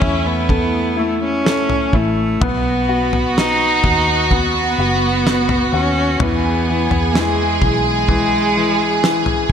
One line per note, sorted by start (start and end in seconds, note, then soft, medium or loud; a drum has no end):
0.00 1.90 E2 medium
0.00 0.49 A3 medium
0.00 0.28 C#4 loud
0.00 0.02 E4 medium
0.00 1.89 E4 medium
0.00 0.95 E4 medium
0.00 kick loud
0.00 floor tom medium
0.27 1.01 B3 medium
0.49 1.43 A3 medium
0.49 kick medium
0.49 floor tom medium
0.96 1.22 A3 medium
0.96 1.92 E4 medium
1.24 1.97 C#4 medium
1.45 2.38 A3 medium
1.45 snare loud
1.70 floor tom medium
1.93 2.38 A1 medium
1.93 2.45 A3 medium
1.93 2.40 E4 soft
1.93 kick medium
2.41 3.80 B1 loud
2.41 3.36 B3 medium
2.41 3.39 B3 medium
2.41 6.16 F#4 medium
2.41 kick loud
2.41 floor tom loud
2.89 3.83 F#4 medium
3.13 floor tom medium
3.38 4.31 B3 medium
3.38 4.32 D#4 medium
3.38 snare loud
3.84 4.75 D#2 medium
3.84 4.78 F#4 soft
3.84 kick loud
3.84 floor tom medium
4.31 5.25 B3 medium
4.31 5.70 B3 loud
4.31 kick medium
4.31 floor tom medium
4.78 5.69 F#1 medium
4.78 5.72 F#4 medium
5.27 6.18 B3 medium
5.27 snare loud
5.49 floor tom medium
5.73 6.17 D#2 medium
5.73 6.24 C#4 medium
5.73 6.19 F#4 medium
6.20 6.87 E2 loud
6.20 6.67 E3 medium
6.20 7.19 B3 medium
6.20 9.52 G#4 medium
6.20 floor tom loud
6.69 7.14 E3 medium
6.91 7.58 E2 loud
6.91 floor tom medium
7.15 7.60 E3 medium
7.15 7.87 G#3 medium
7.15 snare loud
7.62 9.46 B1 medium
7.62 8.07 E3 soft
7.62 kick loud
7.62 floor tom medium
7.88 9.24 G#3 loud
8.09 8.55 E3 medium
8.09 kick medium
8.09 floor tom medium
8.57 9.02 E3 medium
9.03 9.48 E3 medium
9.03 snare loud
9.26 floor tom medium